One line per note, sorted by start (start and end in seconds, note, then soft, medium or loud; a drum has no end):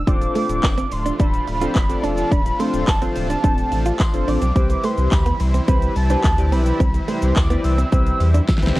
0.07 0.28 D1 loud
0.07 8.80 C3 medium
0.07 4.52 F3 medium
0.07 4.52 A3 medium
0.07 0.75 C4 medium
0.07 0.75 D4 medium
0.07 0.16 D4 medium
0.07 4.52 D4 medium
0.07 0.75 F4 medium
0.07 4.52 F4 medium
0.07 0.75 A4 medium
0.07 0.75 C5 medium
0.07 0.94 D6 loud
0.07 kick loud
0.07 closed hi-hat medium
0.07 shaker medium
0.21 muted clean electric guitar stroke soft
0.21 closed hi-hat medium
0.21 shaker medium
0.36 0.44 A3 medium
0.36 open hi-hat medium
0.36 shaker medium
0.49 0.60 D1 loud
0.49 closed hi-hat medium
0.49 shaker medium
0.63 0.84 F1 loud
0.63 kick loud
0.63 clap loud
0.63 closed hi-hat medium
0.63 tambourine loud
0.63 shaker medium
0.78 0.86 C4 medium
0.78 closed hi-hat medium
0.78 shaker medium
0.92 1.12 D1 medium
0.92 1.21 C6 loud
0.92 muted clean electric guitar stroke soft
0.92 open hi-hat medium
0.92 shaker medium
1.06 1.14 D4 medium
1.06 closed hi-hat medium
1.06 shaker medium
1.19 1.40 D1 loud
1.19 1.45 C4 medium
1.19 1.45 D4 medium
1.19 1.28 D4 medium
1.19 1.45 F4 medium
1.19 1.45 A4 medium
1.19 1.45 C5 medium
1.19 2.05 B5 loud
1.19 kick loud
1.19 closed hi-hat medium
1.19 shaker medium
1.34 closed hi-hat soft
1.34 shaker soft
1.47 1.68 D1 medium
1.47 muted clean electric guitar stroke soft
1.47 open hi-hat medium
1.47 shaker soft
1.61 1.78 C4 medium
1.61 1.78 D4 medium
1.61 1.78 F4 medium
1.61 1.70 F4 medium
1.61 1.79 A4 medium
1.61 1.79 C5 medium
1.61 closed hi-hat medium
1.61 shaker medium
1.75 1.96 F1 loud
1.75 kick loud
1.75 clap loud
1.75 closed hi-hat medium
1.75 tambourine medium
1.75 shaker medium
1.89 2.32 C4 medium
1.89 2.32 D4 medium
1.89 2.32 F4 medium
1.89 2.32 A4 medium
1.89 2.32 D5 medium
1.89 closed hi-hat medium
1.89 shaker medium
2.04 2.24 E1 medium
2.04 2.12 D4 medium
2.04 2.31 A5 medium
2.04 open hi-hat medium
2.04 shaker medium
2.18 closed hi-hat soft
2.18 shaker medium
2.32 2.52 D1 loud
2.32 2.40 D4 medium
2.32 2.61 B5 loud
2.32 kick loud
2.32 closed hi-hat medium
2.32 shaker medium
2.46 muted clean electric guitar stroke soft
2.46 closed hi-hat medium
2.46 shaker medium
2.59 2.68 A3 medium
2.59 2.85 C4 medium
2.59 2.85 D4 medium
2.59 2.85 F4 medium
2.59 2.85 A4 medium
2.59 2.85 C5 medium
2.59 2.89 C6 medium
2.59 open hi-hat medium
2.59 shaker medium
2.74 2.84 D1 loud
2.74 closed hi-hat medium
2.74 shaker medium
2.88 3.08 F1 medium
2.88 3.16 A5 medium
2.88 kick loud
2.88 clap loud
2.88 closed hi-hat medium
2.88 tambourine medium
2.88 shaker medium
3.01 3.27 C4 medium
3.01 3.10 C4 medium
3.01 3.27 D4 medium
3.01 3.27 F4 medium
3.01 3.27 A4 medium
3.01 3.27 C5 medium
3.01 closed hi-hat medium
3.01 shaker medium
3.16 3.36 D1 medium
3.16 4.02 A5 loud
3.16 muted clean electric guitar stroke soft
3.16 open hi-hat medium
3.16 shaker medium
3.30 3.38 D4 medium
3.30 closed hi-hat medium
3.30 shaker medium
3.43 3.64 D1 loud
3.43 3.86 C4 medium
3.43 3.86 D4 medium
3.43 3.52 D4 medium
3.43 3.86 F4 medium
3.43 3.86 A4 medium
3.43 3.86 C5 medium
3.43 kick loud
3.43 closed hi-hat medium
3.43 shaker medium
3.58 closed hi-hat soft
3.58 shaker soft
3.72 3.92 A1 medium
3.72 muted clean electric guitar stroke soft
3.72 open hi-hat medium
3.72 shaker soft
3.86 3.94 F4 medium
3.86 closed hi-hat medium
3.86 shaker medium
3.99 4.30 C6 medium
3.99 muted clean electric guitar stroke soft
3.99 kick loud
3.99 clap loud
3.99 closed hi-hat medium
3.99 tambourine loud
3.99 shaker medium
4.14 4.24 F1 loud
4.14 4.39 C4 medium
4.14 4.39 D4 medium
4.14 4.39 F4 medium
4.14 4.39 A4 medium
4.14 4.39 C5 medium
4.14 closed hi-hat medium
4.14 shaker medium
4.28 4.38 A1 loud
4.28 4.36 D4 medium
4.28 4.86 D6 loud
4.28 open hi-hat medium
4.28 shaker medium
4.42 4.52 B1 loud
4.42 4.50 C4 medium
4.42 closed hi-hat medium
4.42 shaker medium
4.56 4.76 C2 loud
4.56 8.80 E3 medium
4.56 8.80 G3 medium
4.56 5.24 C4 medium
4.56 8.80 C4 medium
4.56 4.64 C4 medium
4.56 5.24 E4 medium
4.56 8.80 E4 medium
4.56 5.24 G4 medium
4.56 5.24 B4 medium
4.56 5.24 C5 medium
4.56 kick loud
4.56 closed hi-hat medium
4.56 shaker medium
4.70 muted clean electric guitar stroke soft
4.70 closed hi-hat medium
4.70 shaker medium
4.84 4.93 A3 medium
4.84 5.14 C6 medium
4.84 open hi-hat medium
4.84 shaker medium
4.98 5.08 C2 loud
4.98 closed hi-hat medium
4.98 shaker medium
5.12 5.32 D2 medium
5.12 5.42 B5 medium
5.12 kick loud
5.12 clap loud
5.12 closed hi-hat medium
5.12 tambourine medium
5.12 shaker medium
5.26 5.34 B3 medium
5.26 closed hi-hat medium
5.26 shaker medium
5.40 5.60 C2 loud
5.40 5.68 C6 medium
5.40 muted clean electric guitar stroke soft
5.40 open hi-hat medium
5.40 shaker medium
5.54 5.63 C4 medium
5.54 closed hi-hat medium
5.54 shaker medium
5.68 5.88 C2 loud
5.68 5.93 C4 medium
5.68 5.77 C4 medium
5.68 5.93 E4 medium
5.68 5.94 G4 medium
5.68 5.94 B4 medium
5.68 5.94 C5 medium
5.68 5.94 B5 medium
5.68 kick loud
5.68 closed hi-hat medium
5.68 shaker medium
5.82 closed hi-hat soft
5.82 shaker soft
5.96 6.16 C2 medium
5.96 6.54 A5 medium
5.96 muted clean electric guitar stroke soft
5.96 open hi-hat medium
5.96 shaker soft
6.10 6.27 C4 medium
6.10 6.19 D4 medium
6.10 6.27 E4 medium
6.10 6.27 G4 medium
6.10 6.27 B4 medium
6.10 6.27 C5 medium
6.10 closed hi-hat medium
6.10 shaker medium
6.24 6.54 D2 loud
6.24 kick loud
6.24 clap loud
6.24 closed hi-hat medium
6.24 tambourine medium
6.24 shaker medium
6.38 6.81 C4 medium
6.38 6.81 E4 medium
6.38 6.81 G4 medium
6.38 6.81 B4 medium
6.38 6.81 D5 medium
6.38 closed hi-hat medium
6.38 shaker medium
6.52 6.72 B1 loud
6.52 6.61 C4 medium
6.52 7.10 B5 medium
6.52 open hi-hat medium
6.52 shaker medium
6.66 closed hi-hat soft
6.66 shaker medium
6.80 7.00 C2 loud
6.80 6.89 C4 medium
6.80 kick loud
6.80 closed hi-hat medium
6.80 shaker medium
6.94 muted clean electric guitar stroke soft
6.94 closed hi-hat medium
6.94 shaker medium
7.08 7.17 A3 medium
7.08 7.34 C4 medium
7.08 7.34 E4 medium
7.08 7.34 G4 medium
7.08 7.34 B4 medium
7.08 7.34 C5 medium
7.08 7.38 C6 medium
7.08 open hi-hat medium
7.08 shaker medium
7.22 7.32 C2 loud
7.22 closed hi-hat medium
7.22 shaker medium
7.36 7.56 D2 loud
7.36 7.64 D6 medium
7.36 kick loud
7.36 clap loud
7.36 closed hi-hat medium
7.36 tambourine medium
7.36 shaker medium
7.50 7.59 B3 medium
7.50 7.76 C4 medium
7.50 7.76 E4 medium
7.50 7.76 G4 medium
7.50 7.76 B4 medium
7.50 7.76 D5 medium
7.50 closed hi-hat medium
7.50 shaker medium
7.64 7.85 C2 loud
7.64 8.73 E6 medium
7.64 muted clean electric guitar stroke soft
7.64 open hi-hat medium
7.64 shaker medium
7.78 7.87 C4 medium
7.78 closed hi-hat medium
7.78 shaker medium
7.92 8.13 C2 loud
7.92 8.35 C4 medium
7.92 8.01 C4 medium
7.92 8.35 E4 medium
7.92 8.35 G4 medium
7.92 8.35 B4 medium
7.92 8.35 C5 medium
7.92 kick loud
7.92 closed hi-hat medium
7.92 shaker medium
8.06 closed hi-hat soft
8.06 shaker soft
8.20 8.40 E2 medium
8.20 muted clean electric guitar stroke soft
8.20 open hi-hat medium
8.20 shaker soft
8.34 8.43 D4 medium
8.34 closed hi-hat medium
8.34 shaker medium
8.48 muted clean electric guitar stroke soft
8.48 kick loud
8.48 snare medium
8.48 closed hi-hat medium
8.48 tambourine medium
8.48 shaker medium
8.58 snare medium
8.62 8.72 C2 loud
8.62 8.80 C4 loud
8.62 8.80 E4 medium
8.62 8.80 G4 medium
8.62 8.80 B4 medium
8.62 8.80 C5 loud
8.62 closed hi-hat medium
8.62 shaker medium
8.67 snare medium
8.76 8.80 E1 medium
8.76 8.80 C4 medium
8.76 snare medium
8.76 open hi-hat medium
8.76 shaker medium